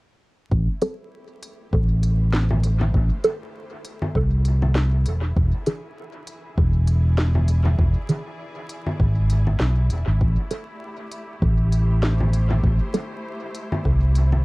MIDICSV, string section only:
0, 0, Header, 1, 2, 480
1, 0, Start_track
1, 0, Key_signature, 0, "minor"
1, 0, Tempo, 606061
1, 409, Time_signature, 4, 2, 24, 8
1, 11443, End_track
2, 0, Start_track
2, 0, Title_t, "String section"
2, 0, Program_c, 0, 48
2, 405, Note_on_c, 0, 57, 71
2, 546, Note_on_c, 0, 64, 80
2, 852, Note_on_c, 0, 67, 65
2, 1429, Note_on_c, 0, 72, 79
2, 4246, Note_off_c, 0, 67, 0
2, 4246, Note_off_c, 0, 72, 0
2, 4247, Note_off_c, 0, 57, 0
2, 4247, Note_on_c, 0, 52, 70
2, 4430, Note_on_c, 0, 68, 86
2, 5432, Note_on_c, 0, 74, 65
2, 8081, Note_on_c, 0, 57, 84
2, 8086, Note_off_c, 0, 68, 0
2, 8088, Note_off_c, 0, 52, 0
2, 8512, Note_on_c, 0, 67, 78
2, 8909, Note_off_c, 0, 74, 0
2, 9353, Note_on_c, 0, 72, 82
2, 11443, Note_off_c, 0, 57, 0
2, 11443, Note_off_c, 0, 64, 0
2, 11443, Note_off_c, 0, 67, 0
2, 11443, Note_off_c, 0, 72, 0
2, 11443, End_track
0, 0, End_of_file